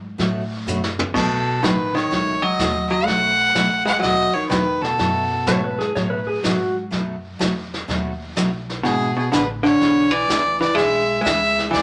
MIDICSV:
0, 0, Header, 1, 8, 480
1, 0, Start_track
1, 0, Tempo, 481541
1, 1139, Time_signature, 4, 2, 24, 8
1, 11784, End_track
2, 0, Start_track
2, 0, Title_t, "Fiddle"
2, 0, Program_c, 0, 110
2, 1153, Note_on_c, 0, 69, 91
2, 1626, Note_on_c, 0, 71, 88
2, 1641, Note_off_c, 0, 69, 0
2, 1938, Note_on_c, 0, 73, 103
2, 1953, Note_off_c, 0, 71, 0
2, 2416, Note_on_c, 0, 75, 102
2, 2431, Note_off_c, 0, 73, 0
2, 2882, Note_off_c, 0, 75, 0
2, 2888, Note_on_c, 0, 75, 97
2, 3047, Note_on_c, 0, 78, 120
2, 3062, Note_off_c, 0, 75, 0
2, 3847, Note_off_c, 0, 78, 0
2, 3853, Note_on_c, 0, 78, 101
2, 3995, Note_off_c, 0, 78, 0
2, 4001, Note_on_c, 0, 75, 104
2, 4326, Note_on_c, 0, 73, 90
2, 4341, Note_off_c, 0, 75, 0
2, 4478, Note_off_c, 0, 73, 0
2, 4484, Note_on_c, 0, 71, 92
2, 4808, Note_on_c, 0, 69, 90
2, 4823, Note_off_c, 0, 71, 0
2, 5777, Note_off_c, 0, 69, 0
2, 8821, Note_on_c, 0, 68, 96
2, 9124, Note_off_c, 0, 68, 0
2, 9150, Note_on_c, 0, 68, 72
2, 9290, Note_off_c, 0, 68, 0
2, 9302, Note_on_c, 0, 71, 90
2, 9448, Note_off_c, 0, 71, 0
2, 9614, Note_on_c, 0, 73, 102
2, 10097, Note_on_c, 0, 74, 106
2, 10112, Note_off_c, 0, 73, 0
2, 10565, Note_off_c, 0, 74, 0
2, 10571, Note_on_c, 0, 74, 96
2, 10714, Note_on_c, 0, 76, 108
2, 10729, Note_off_c, 0, 74, 0
2, 11193, Note_off_c, 0, 76, 0
2, 11199, Note_on_c, 0, 76, 112
2, 11653, Note_off_c, 0, 76, 0
2, 11682, Note_on_c, 0, 74, 98
2, 11784, Note_off_c, 0, 74, 0
2, 11784, End_track
3, 0, Start_track
3, 0, Title_t, "Pedal steel guitar"
3, 0, Program_c, 1, 26
3, 5463, Note_on_c, 1, 73, 98
3, 5616, Note_off_c, 1, 73, 0
3, 5622, Note_on_c, 1, 71, 75
3, 5768, Note_on_c, 1, 68, 87
3, 5775, Note_off_c, 1, 71, 0
3, 5928, Note_off_c, 1, 68, 0
3, 5936, Note_on_c, 1, 73, 92
3, 6076, Note_off_c, 1, 73, 0
3, 6080, Note_on_c, 1, 71, 90
3, 6244, Note_off_c, 1, 71, 0
3, 6249, Note_on_c, 1, 68, 77
3, 6408, Note_on_c, 1, 66, 93
3, 6409, Note_off_c, 1, 68, 0
3, 6730, Note_off_c, 1, 66, 0
3, 11784, End_track
4, 0, Start_track
4, 0, Title_t, "Steel-string acoustic guitar"
4, 0, Program_c, 2, 25
4, 181, Note_on_c, 2, 47, 66
4, 185, Note_on_c, 2, 54, 66
4, 192, Note_on_c, 2, 57, 72
4, 194, Note_on_c, 2, 63, 65
4, 197, Note_on_c, 2, 66, 78
4, 410, Note_off_c, 2, 47, 0
4, 412, Note_off_c, 2, 54, 0
4, 415, Note_off_c, 2, 57, 0
4, 416, Note_off_c, 2, 63, 0
4, 418, Note_off_c, 2, 66, 0
4, 666, Note_on_c, 2, 47, 78
4, 672, Note_on_c, 2, 54, 77
4, 674, Note_on_c, 2, 63, 83
4, 677, Note_on_c, 2, 57, 87
4, 680, Note_on_c, 2, 66, 91
4, 784, Note_off_c, 2, 47, 0
4, 787, Note_off_c, 2, 54, 0
4, 788, Note_off_c, 2, 63, 0
4, 790, Note_off_c, 2, 57, 0
4, 791, Note_off_c, 2, 66, 0
4, 1147, Note_on_c, 2, 47, 49
4, 1151, Note_on_c, 2, 54, 61
4, 1157, Note_on_c, 2, 57, 52
4, 1158, Note_on_c, 2, 63, 58
4, 1159, Note_on_c, 2, 66, 58
4, 1372, Note_off_c, 2, 47, 0
4, 1374, Note_off_c, 2, 54, 0
4, 1377, Note_off_c, 2, 57, 0
4, 1378, Note_off_c, 2, 63, 0
4, 1378, Note_off_c, 2, 66, 0
4, 1622, Note_on_c, 2, 47, 73
4, 1625, Note_on_c, 2, 54, 76
4, 1629, Note_on_c, 2, 57, 84
4, 1635, Note_on_c, 2, 63, 76
4, 1635, Note_on_c, 2, 66, 86
4, 1742, Note_off_c, 2, 47, 0
4, 1743, Note_off_c, 2, 54, 0
4, 1745, Note_off_c, 2, 57, 0
4, 1748, Note_off_c, 2, 63, 0
4, 1748, Note_off_c, 2, 66, 0
4, 2099, Note_on_c, 2, 54, 60
4, 2102, Note_on_c, 2, 47, 59
4, 2106, Note_on_c, 2, 57, 62
4, 2111, Note_on_c, 2, 63, 66
4, 2111, Note_on_c, 2, 66, 72
4, 2328, Note_off_c, 2, 54, 0
4, 2330, Note_off_c, 2, 47, 0
4, 2332, Note_off_c, 2, 57, 0
4, 2334, Note_off_c, 2, 63, 0
4, 2334, Note_off_c, 2, 66, 0
4, 2579, Note_on_c, 2, 47, 70
4, 2585, Note_on_c, 2, 54, 78
4, 2586, Note_on_c, 2, 57, 71
4, 2590, Note_on_c, 2, 63, 77
4, 2595, Note_on_c, 2, 66, 74
4, 2700, Note_off_c, 2, 47, 0
4, 2703, Note_off_c, 2, 54, 0
4, 2703, Note_off_c, 2, 57, 0
4, 2706, Note_off_c, 2, 63, 0
4, 2708, Note_off_c, 2, 66, 0
4, 3061, Note_on_c, 2, 54, 53
4, 3062, Note_on_c, 2, 47, 57
4, 3065, Note_on_c, 2, 57, 54
4, 3071, Note_on_c, 2, 63, 55
4, 3073, Note_on_c, 2, 66, 59
4, 3289, Note_off_c, 2, 54, 0
4, 3290, Note_off_c, 2, 47, 0
4, 3291, Note_off_c, 2, 57, 0
4, 3294, Note_off_c, 2, 63, 0
4, 3295, Note_off_c, 2, 66, 0
4, 3532, Note_on_c, 2, 47, 73
4, 3537, Note_on_c, 2, 54, 76
4, 3543, Note_on_c, 2, 57, 78
4, 3545, Note_on_c, 2, 63, 76
4, 3546, Note_on_c, 2, 66, 80
4, 3657, Note_off_c, 2, 47, 0
4, 3659, Note_off_c, 2, 54, 0
4, 3662, Note_off_c, 2, 57, 0
4, 3663, Note_off_c, 2, 63, 0
4, 3664, Note_off_c, 2, 66, 0
4, 4011, Note_on_c, 2, 47, 60
4, 4011, Note_on_c, 2, 54, 61
4, 4018, Note_on_c, 2, 57, 66
4, 4019, Note_on_c, 2, 63, 73
4, 4026, Note_on_c, 2, 66, 69
4, 4244, Note_off_c, 2, 47, 0
4, 4244, Note_off_c, 2, 54, 0
4, 4248, Note_off_c, 2, 57, 0
4, 4248, Note_off_c, 2, 63, 0
4, 4252, Note_off_c, 2, 66, 0
4, 4481, Note_on_c, 2, 47, 75
4, 4484, Note_on_c, 2, 54, 73
4, 4492, Note_on_c, 2, 57, 78
4, 4492, Note_on_c, 2, 63, 80
4, 4495, Note_on_c, 2, 66, 81
4, 4611, Note_off_c, 2, 47, 0
4, 4613, Note_off_c, 2, 54, 0
4, 4617, Note_off_c, 2, 57, 0
4, 4617, Note_off_c, 2, 63, 0
4, 4618, Note_off_c, 2, 66, 0
4, 4962, Note_on_c, 2, 47, 54
4, 4964, Note_on_c, 2, 54, 54
4, 4969, Note_on_c, 2, 57, 58
4, 4971, Note_on_c, 2, 63, 56
4, 4976, Note_on_c, 2, 66, 60
4, 5200, Note_off_c, 2, 47, 0
4, 5201, Note_off_c, 2, 54, 0
4, 5203, Note_off_c, 2, 57, 0
4, 5204, Note_off_c, 2, 63, 0
4, 5207, Note_off_c, 2, 66, 0
4, 5447, Note_on_c, 2, 47, 78
4, 5451, Note_on_c, 2, 54, 82
4, 5452, Note_on_c, 2, 57, 81
4, 5455, Note_on_c, 2, 63, 78
4, 5460, Note_on_c, 2, 66, 88
4, 5574, Note_off_c, 2, 47, 0
4, 5576, Note_off_c, 2, 54, 0
4, 5577, Note_off_c, 2, 57, 0
4, 5578, Note_off_c, 2, 63, 0
4, 5581, Note_off_c, 2, 66, 0
4, 5934, Note_on_c, 2, 47, 63
4, 5937, Note_on_c, 2, 54, 59
4, 5943, Note_on_c, 2, 57, 59
4, 5943, Note_on_c, 2, 63, 69
4, 5946, Note_on_c, 2, 66, 64
4, 6166, Note_off_c, 2, 47, 0
4, 6167, Note_off_c, 2, 54, 0
4, 6170, Note_off_c, 2, 57, 0
4, 6170, Note_off_c, 2, 63, 0
4, 6172, Note_off_c, 2, 66, 0
4, 6413, Note_on_c, 2, 47, 73
4, 6417, Note_on_c, 2, 54, 75
4, 6422, Note_on_c, 2, 63, 72
4, 6423, Note_on_c, 2, 57, 83
4, 6429, Note_on_c, 2, 66, 85
4, 6537, Note_off_c, 2, 47, 0
4, 6539, Note_off_c, 2, 54, 0
4, 6542, Note_off_c, 2, 57, 0
4, 6542, Note_off_c, 2, 63, 0
4, 6545, Note_off_c, 2, 66, 0
4, 6883, Note_on_c, 2, 47, 49
4, 6888, Note_on_c, 2, 54, 59
4, 6889, Note_on_c, 2, 57, 56
4, 6895, Note_on_c, 2, 63, 51
4, 6899, Note_on_c, 2, 66, 63
4, 7120, Note_off_c, 2, 47, 0
4, 7123, Note_off_c, 2, 54, 0
4, 7123, Note_off_c, 2, 57, 0
4, 7126, Note_off_c, 2, 63, 0
4, 7128, Note_off_c, 2, 66, 0
4, 7368, Note_on_c, 2, 47, 73
4, 7369, Note_on_c, 2, 54, 77
4, 7370, Note_on_c, 2, 57, 75
4, 7379, Note_on_c, 2, 63, 75
4, 7380, Note_on_c, 2, 66, 86
4, 7494, Note_off_c, 2, 47, 0
4, 7495, Note_off_c, 2, 54, 0
4, 7496, Note_off_c, 2, 57, 0
4, 7500, Note_off_c, 2, 63, 0
4, 7501, Note_off_c, 2, 66, 0
4, 7852, Note_on_c, 2, 47, 61
4, 7854, Note_on_c, 2, 54, 63
4, 7857, Note_on_c, 2, 57, 63
4, 7861, Note_on_c, 2, 63, 62
4, 7862, Note_on_c, 2, 66, 76
4, 8085, Note_off_c, 2, 47, 0
4, 8086, Note_off_c, 2, 54, 0
4, 8087, Note_off_c, 2, 57, 0
4, 8089, Note_off_c, 2, 63, 0
4, 8090, Note_off_c, 2, 66, 0
4, 8332, Note_on_c, 2, 47, 75
4, 8337, Note_on_c, 2, 54, 80
4, 8338, Note_on_c, 2, 57, 72
4, 8343, Note_on_c, 2, 63, 81
4, 8346, Note_on_c, 2, 66, 86
4, 8457, Note_off_c, 2, 47, 0
4, 8459, Note_off_c, 2, 54, 0
4, 8460, Note_off_c, 2, 57, 0
4, 8462, Note_off_c, 2, 63, 0
4, 8463, Note_off_c, 2, 66, 0
4, 8816, Note_on_c, 2, 52, 60
4, 8821, Note_on_c, 2, 59, 50
4, 8825, Note_on_c, 2, 62, 58
4, 8826, Note_on_c, 2, 68, 61
4, 9046, Note_off_c, 2, 52, 0
4, 9049, Note_off_c, 2, 59, 0
4, 9051, Note_off_c, 2, 62, 0
4, 9052, Note_off_c, 2, 68, 0
4, 9293, Note_on_c, 2, 52, 72
4, 9297, Note_on_c, 2, 59, 79
4, 9302, Note_on_c, 2, 62, 82
4, 9306, Note_on_c, 2, 68, 79
4, 9417, Note_off_c, 2, 52, 0
4, 9419, Note_off_c, 2, 59, 0
4, 9421, Note_off_c, 2, 62, 0
4, 9423, Note_off_c, 2, 68, 0
4, 9775, Note_on_c, 2, 52, 58
4, 9782, Note_on_c, 2, 59, 63
4, 9785, Note_on_c, 2, 62, 68
4, 9791, Note_on_c, 2, 68, 61
4, 10006, Note_off_c, 2, 52, 0
4, 10009, Note_off_c, 2, 59, 0
4, 10011, Note_off_c, 2, 62, 0
4, 10014, Note_off_c, 2, 68, 0
4, 10251, Note_on_c, 2, 52, 64
4, 10256, Note_on_c, 2, 59, 78
4, 10260, Note_on_c, 2, 62, 80
4, 10265, Note_on_c, 2, 68, 86
4, 10376, Note_off_c, 2, 52, 0
4, 10378, Note_off_c, 2, 59, 0
4, 10380, Note_off_c, 2, 62, 0
4, 10383, Note_off_c, 2, 68, 0
4, 10740, Note_on_c, 2, 52, 53
4, 10745, Note_on_c, 2, 59, 57
4, 10752, Note_on_c, 2, 62, 59
4, 10754, Note_on_c, 2, 68, 58
4, 10968, Note_off_c, 2, 52, 0
4, 10971, Note_off_c, 2, 59, 0
4, 10974, Note_off_c, 2, 62, 0
4, 10975, Note_off_c, 2, 68, 0
4, 11221, Note_on_c, 2, 52, 82
4, 11227, Note_on_c, 2, 59, 83
4, 11234, Note_on_c, 2, 62, 83
4, 11234, Note_on_c, 2, 68, 82
4, 11341, Note_off_c, 2, 52, 0
4, 11343, Note_off_c, 2, 59, 0
4, 11347, Note_off_c, 2, 62, 0
4, 11347, Note_off_c, 2, 68, 0
4, 11700, Note_on_c, 2, 52, 62
4, 11706, Note_on_c, 2, 59, 65
4, 11711, Note_on_c, 2, 62, 68
4, 11713, Note_on_c, 2, 68, 64
4, 11784, Note_off_c, 2, 52, 0
4, 11784, Note_off_c, 2, 59, 0
4, 11784, Note_off_c, 2, 62, 0
4, 11784, Note_off_c, 2, 68, 0
4, 11784, End_track
5, 0, Start_track
5, 0, Title_t, "Hollow-body jazz guitar"
5, 0, Program_c, 3, 26
5, 1137, Note_on_c, 3, 47, 75
5, 1584, Note_off_c, 3, 47, 0
5, 1622, Note_on_c, 3, 51, 66
5, 1929, Note_off_c, 3, 51, 0
5, 1941, Note_on_c, 3, 51, 80
5, 2415, Note_off_c, 3, 51, 0
5, 2415, Note_on_c, 3, 54, 81
5, 2886, Note_off_c, 3, 54, 0
5, 2897, Note_on_c, 3, 54, 84
5, 3051, Note_off_c, 3, 54, 0
5, 3051, Note_on_c, 3, 57, 99
5, 3843, Note_on_c, 3, 56, 88
5, 3862, Note_off_c, 3, 57, 0
5, 3981, Note_on_c, 3, 54, 82
5, 3996, Note_off_c, 3, 56, 0
5, 4337, Note_off_c, 3, 54, 0
5, 4337, Note_on_c, 3, 51, 70
5, 4473, Note_off_c, 3, 51, 0
5, 4485, Note_on_c, 3, 51, 76
5, 4799, Note_off_c, 3, 51, 0
5, 4799, Note_on_c, 3, 47, 64
5, 5772, Note_off_c, 3, 47, 0
5, 8806, Note_on_c, 3, 47, 72
5, 9115, Note_off_c, 3, 47, 0
5, 9137, Note_on_c, 3, 47, 66
5, 9283, Note_off_c, 3, 47, 0
5, 9288, Note_on_c, 3, 50, 66
5, 9378, Note_off_c, 3, 50, 0
5, 9602, Note_on_c, 3, 50, 83
5, 10075, Note_off_c, 3, 50, 0
5, 10075, Note_on_c, 3, 52, 82
5, 10561, Note_off_c, 3, 52, 0
5, 10573, Note_on_c, 3, 52, 81
5, 10713, Note_off_c, 3, 52, 0
5, 10713, Note_on_c, 3, 56, 93
5, 11164, Note_off_c, 3, 56, 0
5, 11176, Note_on_c, 3, 56, 70
5, 11641, Note_off_c, 3, 56, 0
5, 11671, Note_on_c, 3, 52, 86
5, 11784, Note_off_c, 3, 52, 0
5, 11784, End_track
6, 0, Start_track
6, 0, Title_t, "Upright bass"
6, 0, Program_c, 4, 32
6, 0, Note_on_c, 4, 44, 94
6, 170, Note_off_c, 4, 44, 0
6, 190, Note_on_c, 4, 45, 93
6, 650, Note_off_c, 4, 45, 0
6, 663, Note_on_c, 4, 42, 93
6, 1127, Note_off_c, 4, 42, 0
6, 1147, Note_on_c, 4, 35, 89
6, 1609, Note_off_c, 4, 35, 0
6, 1629, Note_on_c, 4, 33, 91
6, 2089, Note_off_c, 4, 33, 0
6, 2109, Note_on_c, 4, 37, 83
6, 2569, Note_off_c, 4, 37, 0
6, 2584, Note_on_c, 4, 39, 89
6, 3047, Note_off_c, 4, 39, 0
6, 3068, Note_on_c, 4, 35, 86
6, 3529, Note_off_c, 4, 35, 0
6, 3544, Note_on_c, 4, 37, 94
6, 4007, Note_off_c, 4, 37, 0
6, 4021, Note_on_c, 4, 39, 84
6, 4323, Note_off_c, 4, 39, 0
6, 4498, Note_on_c, 4, 40, 91
6, 4964, Note_off_c, 4, 40, 0
6, 4977, Note_on_c, 4, 42, 85
6, 5443, Note_off_c, 4, 42, 0
6, 5456, Note_on_c, 4, 44, 95
6, 5923, Note_off_c, 4, 44, 0
6, 5939, Note_on_c, 4, 45, 87
6, 6404, Note_off_c, 4, 45, 0
6, 6423, Note_on_c, 4, 44, 97
6, 6886, Note_off_c, 4, 44, 0
6, 6901, Note_on_c, 4, 42, 87
6, 7365, Note_off_c, 4, 42, 0
6, 7381, Note_on_c, 4, 40, 92
6, 7845, Note_off_c, 4, 40, 0
6, 7860, Note_on_c, 4, 39, 92
6, 8324, Note_off_c, 4, 39, 0
6, 8343, Note_on_c, 4, 35, 96
6, 8806, Note_off_c, 4, 35, 0
6, 8818, Note_on_c, 4, 32, 88
6, 9122, Note_off_c, 4, 32, 0
6, 9301, Note_on_c, 4, 33, 89
6, 9765, Note_off_c, 4, 33, 0
6, 9779, Note_on_c, 4, 35, 87
6, 10244, Note_off_c, 4, 35, 0
6, 10259, Note_on_c, 4, 37, 92
6, 10723, Note_off_c, 4, 37, 0
6, 10741, Note_on_c, 4, 35, 93
6, 11205, Note_off_c, 4, 35, 0
6, 11217, Note_on_c, 4, 37, 91
6, 11682, Note_off_c, 4, 37, 0
6, 11699, Note_on_c, 4, 38, 89
6, 11784, Note_off_c, 4, 38, 0
6, 11784, End_track
7, 0, Start_track
7, 0, Title_t, "Muted upright bass strokes"
7, 9146, Note_on_c, 9, 29, 40
7, 9246, Note_off_c, 9, 29, 0
7, 11784, End_track
8, 0, Start_track
8, 0, Title_t, "Drums"
8, 189, Note_on_c, 9, 36, 26
8, 191, Note_on_c, 9, 25, 58
8, 191, Note_on_c, 9, 38, 51
8, 289, Note_off_c, 9, 36, 0
8, 291, Note_off_c, 9, 38, 0
8, 672, Note_on_c, 9, 44, 70
8, 772, Note_off_c, 9, 44, 0
8, 834, Note_on_c, 9, 38, 74
8, 934, Note_off_c, 9, 38, 0
8, 988, Note_on_c, 9, 43, 105
8, 1087, Note_off_c, 9, 43, 0
8, 1150, Note_on_c, 9, 36, 76
8, 1152, Note_off_c, 9, 25, 0
8, 1152, Note_on_c, 9, 25, 43
8, 1152, Note_on_c, 9, 38, 44
8, 1152, Note_on_c, 9, 49, 79
8, 1249, Note_off_c, 9, 36, 0
8, 1251, Note_off_c, 9, 38, 0
8, 1251, Note_off_c, 9, 49, 0
8, 1629, Note_on_c, 9, 36, 23
8, 1631, Note_on_c, 9, 38, 68
8, 1631, Note_on_c, 9, 44, 50
8, 1729, Note_off_c, 9, 36, 0
8, 1731, Note_off_c, 9, 38, 0
8, 1731, Note_off_c, 9, 44, 0
8, 1956, Note_on_c, 9, 38, 41
8, 2056, Note_off_c, 9, 38, 0
8, 2109, Note_on_c, 9, 36, 24
8, 2113, Note_off_c, 9, 25, 0
8, 2113, Note_on_c, 9, 25, 47
8, 2113, Note_on_c, 9, 38, 42
8, 2209, Note_off_c, 9, 36, 0
8, 2212, Note_off_c, 9, 38, 0
8, 2586, Note_on_c, 9, 36, 29
8, 2586, Note_on_c, 9, 38, 70
8, 2586, Note_on_c, 9, 44, 60
8, 2686, Note_off_c, 9, 36, 0
8, 2686, Note_off_c, 9, 38, 0
8, 2686, Note_off_c, 9, 44, 0
8, 3064, Note_off_c, 9, 25, 0
8, 3064, Note_on_c, 9, 25, 48
8, 3064, Note_on_c, 9, 36, 28
8, 3064, Note_on_c, 9, 38, 47
8, 3163, Note_off_c, 9, 38, 0
8, 3164, Note_off_c, 9, 36, 0
8, 3541, Note_on_c, 9, 36, 20
8, 3541, Note_on_c, 9, 38, 71
8, 3541, Note_on_c, 9, 44, 65
8, 3640, Note_off_c, 9, 38, 0
8, 3640, Note_off_c, 9, 44, 0
8, 3641, Note_off_c, 9, 36, 0
8, 3868, Note_on_c, 9, 38, 43
8, 3967, Note_off_c, 9, 38, 0
8, 4016, Note_off_c, 9, 25, 0
8, 4016, Note_on_c, 9, 25, 51
8, 4016, Note_on_c, 9, 38, 42
8, 4019, Note_on_c, 9, 36, 25
8, 4115, Note_off_c, 9, 38, 0
8, 4119, Note_off_c, 9, 36, 0
8, 4497, Note_on_c, 9, 38, 75
8, 4497, Note_on_c, 9, 44, 53
8, 4498, Note_on_c, 9, 36, 23
8, 4597, Note_off_c, 9, 36, 0
8, 4597, Note_off_c, 9, 38, 0
8, 4597, Note_off_c, 9, 44, 0
8, 4826, Note_on_c, 9, 38, 43
8, 4926, Note_off_c, 9, 38, 0
8, 4973, Note_off_c, 9, 25, 0
8, 4973, Note_on_c, 9, 25, 44
8, 4973, Note_on_c, 9, 38, 45
8, 4976, Note_on_c, 9, 36, 19
8, 5073, Note_off_c, 9, 38, 0
8, 5076, Note_off_c, 9, 36, 0
8, 5453, Note_on_c, 9, 38, 78
8, 5453, Note_on_c, 9, 44, 62
8, 5457, Note_on_c, 9, 36, 27
8, 5553, Note_off_c, 9, 38, 0
8, 5553, Note_off_c, 9, 44, 0
8, 5556, Note_off_c, 9, 36, 0
8, 5785, Note_on_c, 9, 38, 46
8, 5885, Note_off_c, 9, 38, 0
8, 5940, Note_on_c, 9, 36, 19
8, 5943, Note_off_c, 9, 25, 0
8, 5943, Note_on_c, 9, 25, 55
8, 5943, Note_on_c, 9, 38, 44
8, 6040, Note_off_c, 9, 36, 0
8, 6042, Note_off_c, 9, 38, 0
8, 6419, Note_on_c, 9, 38, 69
8, 6419, Note_on_c, 9, 44, 54
8, 6420, Note_on_c, 9, 36, 22
8, 6519, Note_off_c, 9, 38, 0
8, 6519, Note_off_c, 9, 44, 0
8, 6520, Note_off_c, 9, 36, 0
8, 6898, Note_off_c, 9, 25, 0
8, 6898, Note_on_c, 9, 25, 51
8, 6898, Note_on_c, 9, 38, 43
8, 6900, Note_on_c, 9, 36, 25
8, 6998, Note_off_c, 9, 38, 0
8, 7000, Note_off_c, 9, 36, 0
8, 7381, Note_on_c, 9, 36, 22
8, 7381, Note_on_c, 9, 38, 75
8, 7381, Note_on_c, 9, 44, 59
8, 7480, Note_off_c, 9, 36, 0
8, 7481, Note_off_c, 9, 38, 0
8, 7481, Note_off_c, 9, 44, 0
8, 7712, Note_on_c, 9, 38, 43
8, 7812, Note_off_c, 9, 38, 0
8, 7861, Note_on_c, 9, 36, 22
8, 7864, Note_off_c, 9, 25, 0
8, 7864, Note_on_c, 9, 25, 51
8, 7864, Note_on_c, 9, 38, 42
8, 7961, Note_off_c, 9, 36, 0
8, 7963, Note_off_c, 9, 38, 0
8, 8340, Note_on_c, 9, 36, 21
8, 8341, Note_on_c, 9, 38, 72
8, 8341, Note_on_c, 9, 44, 63
8, 8439, Note_off_c, 9, 36, 0
8, 8440, Note_off_c, 9, 38, 0
8, 8440, Note_off_c, 9, 44, 0
8, 8667, Note_on_c, 9, 38, 42
8, 8767, Note_off_c, 9, 38, 0
8, 8818, Note_off_c, 9, 25, 0
8, 8818, Note_on_c, 9, 25, 42
8, 8818, Note_on_c, 9, 38, 49
8, 8819, Note_on_c, 9, 36, 19
8, 8917, Note_off_c, 9, 38, 0
8, 8918, Note_off_c, 9, 36, 0
8, 9298, Note_on_c, 9, 36, 20
8, 9299, Note_on_c, 9, 38, 70
8, 9299, Note_on_c, 9, 44, 68
8, 9398, Note_off_c, 9, 36, 0
8, 9398, Note_off_c, 9, 38, 0
8, 9398, Note_off_c, 9, 44, 0
8, 9630, Note_on_c, 9, 38, 44
8, 9729, Note_off_c, 9, 38, 0
8, 9778, Note_on_c, 9, 36, 24
8, 9782, Note_off_c, 9, 25, 0
8, 9782, Note_on_c, 9, 25, 49
8, 9782, Note_on_c, 9, 38, 45
8, 9877, Note_off_c, 9, 36, 0
8, 9882, Note_off_c, 9, 38, 0
8, 10259, Note_on_c, 9, 36, 21
8, 10263, Note_on_c, 9, 38, 71
8, 10263, Note_on_c, 9, 44, 71
8, 10358, Note_off_c, 9, 36, 0
8, 10363, Note_off_c, 9, 38, 0
8, 10363, Note_off_c, 9, 44, 0
8, 10585, Note_on_c, 9, 38, 44
8, 10685, Note_off_c, 9, 38, 0
8, 10738, Note_on_c, 9, 36, 25
8, 10739, Note_off_c, 9, 25, 0
8, 10739, Note_on_c, 9, 25, 45
8, 10739, Note_on_c, 9, 38, 45
8, 10838, Note_off_c, 9, 36, 0
8, 10839, Note_off_c, 9, 38, 0
8, 11220, Note_on_c, 9, 36, 22
8, 11223, Note_on_c, 9, 38, 78
8, 11223, Note_on_c, 9, 44, 65
8, 11319, Note_off_c, 9, 36, 0
8, 11323, Note_off_c, 9, 38, 0
8, 11323, Note_off_c, 9, 44, 0
8, 11550, Note_on_c, 9, 38, 42
8, 11650, Note_off_c, 9, 38, 0
8, 11700, Note_on_c, 9, 36, 25
8, 11701, Note_off_c, 9, 25, 0
8, 11701, Note_on_c, 9, 25, 48
8, 11701, Note_on_c, 9, 38, 48
8, 11784, Note_off_c, 9, 25, 0
8, 11784, Note_off_c, 9, 36, 0
8, 11784, Note_off_c, 9, 38, 0
8, 11784, End_track
0, 0, End_of_file